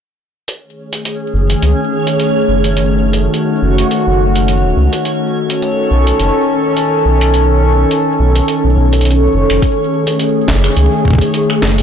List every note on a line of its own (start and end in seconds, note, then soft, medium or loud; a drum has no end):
0.48 5.01 D#3 medium
0.48 5.01 A3 medium
0.48 9.64 C#4 medium
0.48 2.74 G#4 medium
0.48 9.64 C#5 medium
0.48 closed hi-hat medium
0.93 closed hi-hat medium
1.05 closed hi-hat medium
1.34 1.55 F#1 medium
1.50 closed hi-hat medium
1.62 1.74 C#2 medium
1.62 closed hi-hat medium
2.07 closed hi-hat medium
2.20 closed hi-hat medium
2.48 3.28 F#1 medium
2.64 closed hi-hat medium
2.77 5.03 F#4 medium
2.77 closed hi-hat medium
3.13 closed hi-hat medium
3.34 closed hi-hat medium
3.62 3.84 F#1 loud
3.78 closed hi-hat medium
3.91 closed hi-hat medium
4.07 4.66 F#1 medium
4.36 closed hi-hat medium
4.48 closed hi-hat medium
4.64 4.73 D#1 medium
4.77 4.88 C#2 medium
4.93 closed hi-hat medium
5.05 9.58 D#3 medium
5.05 9.58 C#4 medium
5.05 9.58 A4 medium
5.05 closed hi-hat medium
5.50 closed hi-hat medium
5.62 closed hi-hat soft
5.91 6.12 B1 medium
6.07 closed hi-hat medium
6.20 6.31 F#1 loud
6.20 closed hi-hat medium
6.77 closed hi-hat medium
7.05 7.85 B1 medium
7.21 closed hi-hat medium
7.34 closed hi-hat soft
7.91 closed hi-hat soft
8.20 8.41 B1 loud
8.35 closed hi-hat medium
8.48 closed hi-hat medium
8.64 8.76 B1 medium
8.77 9.28 B1 loud
8.93 closed hi-hat medium
9.01 closed hi-hat soft
9.05 closed hi-hat soft
9.11 closed hi-hat soft
9.34 9.45 F#1 loud
9.50 9.59 F#1 medium
9.50 closed hi-hat medium
9.62 11.83 D#3 medium
9.62 11.83 A3 medium
9.62 11.83 G#4 medium
9.62 kick medium
9.62 closed hi-hat medium
10.07 closed hi-hat medium
10.20 closed hi-hat medium
10.48 10.69 F#1 loud
10.48 kick loud
10.48 snare loud
10.64 finger snap medium
10.64 closed hi-hat medium
10.77 10.88 C#2 medium
10.77 closed hi-hat medium
11.05 kick medium
11.08 kick medium
11.10 kick medium
11.13 kick medium
11.15 kick medium
11.18 kick loud
11.18 closed hi-hat medium
11.34 closed hi-hat medium
11.50 finger snap soft
11.62 11.83 F#1 medium
11.62 snare loud
11.78 closed hi-hat medium